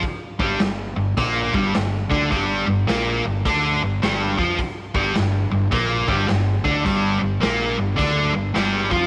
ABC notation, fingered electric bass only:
X:1
M:4/4
L:1/8
Q:"Swing" 1/4=106
K:Gm
V:1 name="Fingered electric bass" clef=bass
z G,,, G,,, G,,, B,,, G,,, G,,, D,, | G,,, G,,, B,,, G,,, D,, G,,, G,,, F,, | z G,,, G,,, G,,, B,,, G,,, G,,, D,, | G,,, G,,, B,,, G,,, D,, G,,, G,,, F,, |]